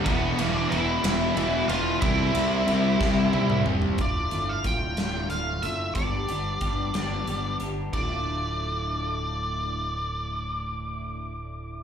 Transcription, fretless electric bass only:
X:1
M:6/8
L:1/8
Q:3/8=61
K:Ddor
V:1 name="Fretless electric bass" clef=bass
E,,, E,,, E,,, E,,, E,,, E,,, | C,, C,, C,, C,, C,, E,,, | D,,, G,,, D,,, D,,, D,,, ^F,,, | G,,, G,,, G,,, G,,, G,,, G,,, |
D,,,6- | D,,,6 |]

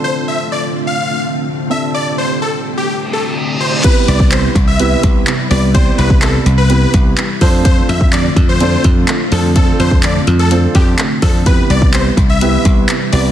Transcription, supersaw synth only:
X:1
M:4/4
L:1/16
Q:1/4=126
K:C
V:1 name="Supersaw synth"
c2 e2 d z2 f3 z4 e z | d2 c2 A z2 G2 z A z3 c z | B2 d2 c z2 e3 z4 d z | c2 B2 A z2 B3 z4 c z |
c2 e2 d z2 c3 z4 A z | A2 c2 d z2 A2 z G z3 A z | B2 d2 c z2 e3 z4 d z |]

